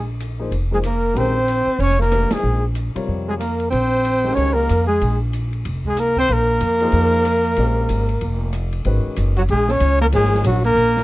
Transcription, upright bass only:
0.00 0.48 A#1 medium
0.51 1.12 F1 medium
1.15 1.64 A#1 medium
1.67 muted upright bass stroke soft
1.79 2.28 F1 medium
2.31 muted upright bass stroke soft
2.43 2.92 A#1 medium
2.96 muted upright bass stroke soft
3.08 3.69 F2 medium
3.72 4.33 A#1 medium
4.37 4.67 C#2 medium
4.70 4.99 F2 medium
5.01 5.62 A#1 medium
5.65 6.26 F1 medium
6.29 6.59 A#1 medium
6.61 6.91 F2 medium
6.93 7.54 F2 medium
7.57 7.87 A#1 medium
7.90 8.19 G#1 medium
8.22 8.82 F1 medium
8.85 9.04 G#1 medium
9.06 muted upright bass stroke soft
9.17 9.48 F#1 medium
9.49 9.80 A#1 medium
9.81 10.12 C#2 medium
10.13 10.43 G#1 medium
10.44 10.75 A#1 medium
10.75 11.04 A#1 medium

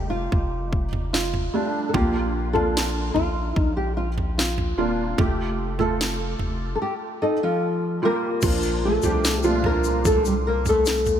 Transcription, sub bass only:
0.00 0.29 F1 medium
0.32 1.50 F1 medium
1.94 3.12 A#1 loud
3.15 3.53 A#1 medium
3.56 4.74 A#1 loud
4.77 5.15 D#1 medium
5.18 6.36 F1 loud
6.39 6.77 F1 medium
8.43 9.00 A#1 loud
9.04 11.20 C2 loud

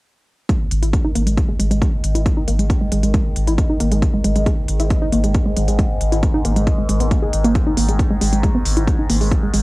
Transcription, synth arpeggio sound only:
0.49 0.56 G#3 medium
0.83 0.89 E4 medium
1.05 1.11 D#4 medium
1.15 1.22 A#3 medium
1.27 1.37 G#3 medium
1.49 1.55 G#3 medium
1.59 1.66 G#3 medium
1.71 1.80 G#3 medium
1.82 1.89 G#3 medium
2.15 2.22 E4 medium
2.37 2.44 D#4 medium
2.48 2.55 A#3 medium
2.59 2.69 G#3 medium
2.81 2.88 G#3 medium
2.92 2.99 G#3 medium
3.03 3.13 G#3 medium
3.14 3.21 G#3 medium
3.47 3.54 E4 medium
3.70 3.76 D#4 medium
3.80 3.87 A#3 medium
3.92 4.01 G#3 medium
4.14 4.20 G#3 medium
4.24 4.31 G#3 medium
4.36 4.45 G#3 medium
4.46 4.53 G#3 medium
4.80 4.86 E4 medium
5.02 5.08 D#4 medium
5.12 5.19 A#3 medium
5.24 5.34 G#3 medium
5.46 5.52 G#3 medium
5.57 5.64 G#3 medium
5.68 5.77 G#3 medium
5.79 5.86 G#3 medium
6.12 6.19 E4 medium
6.34 6.41 D#4 medium
6.45 6.52 A#3 medium
6.56 6.66 G#3 medium
6.78 6.85 G#3 medium
6.89 6.99 G#3 medium
7.00 7.07 B3 medium
7.11 7.18 A#3 medium
7.22 7.29 G#4 medium
7.44 7.54 A#3 loud
7.67 7.73 D#4 medium
7.77 7.84 A#3 medium
7.89 7.98 G#3 medium
8.11 8.17 G#3 medium
8.21 8.28 G#3 medium
8.33 8.42 G#3 medium
8.43 8.50 G#3 medium
8.55 8.59 B3 medium
8.77 8.83 E4 medium
8.99 9.05 D#4 medium
9.10 9.17 A#3 medium
9.21 9.31 G#3 medium
9.43 9.50 G#3 medium
9.54 9.61 G#3 medium

